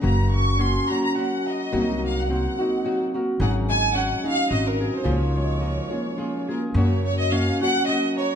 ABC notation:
X:1
M:3/4
L:1/16
Q:"Swing" 1/4=107
K:Db
V:1 name="Violin section"
b2 d'2 c'2 b b g2 e2- | e2 f g6 z3 | g2 a2 g2 f2 e B2 c | d8- d2 B2 |
[K:F#] c2 c d e2 f2 d2 c2 |]
V:2 name="Harp"
G,2 B,2 D2 G2 g2 b2 | G,2 B,2 C2 E2 G2 B2 | G,2 A,2 D2 E2 G2 A2 | F,2 A,2 B,2 D2 F2 A2 |
[K:F#] F,2 z2 C2 F2 f2 a2 |]
V:3 name="Nylon-string guitar"
[G,,D,G,B,DG]4 [G,B,DG]2 [G,B,DG]2 [G,B,DG]4 | [C,G,B,EG]4 [G,B,EG]2 [B,EG]2 [G,B,EG]2 [B,EG]2 | [A,,D,G,DEA]4 [G,DEA]2 [G,DEA]2 [G,CEA]2 [G,CEA]2 | [D,F,B,FA]4 [F,B,FA]2 [B,FA]2 [F,B,FA]2 [B,FA]2 |
[K:F#] [F,,C,F,A,CF]4 [F,A,CF]2 [F,A,CF]2 [F,A,CF]4 |]
V:4 name="Upright bass" clef=bass
G,,,8 z4 | C,,8 z4 | A,,,8 A,,,4 | D,,8 z4 |
[K:F#] F,,8 z4 |]